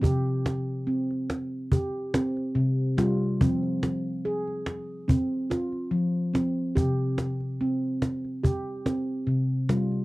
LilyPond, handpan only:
<<
  \new Staff \with { instrumentName = "Handpan" } { \time 4/4 \key c \phrygian \tempo 4 = 71 g'4 c'4 g'8 c'4 f'8 | c'4 aes'4 c'8 f'4 c'8 | g'4 c'4 g'8 c'4 f'8 | }
  \new Staff \with { instrumentName = "Handpan" } { \clef bass \time 4/4 \key c \phrygian c8 r2 r8 c16 r16 g8 | f8 r2 r8 f16 r8. | c8 r2 r8 c16 r16 g8 | }
>>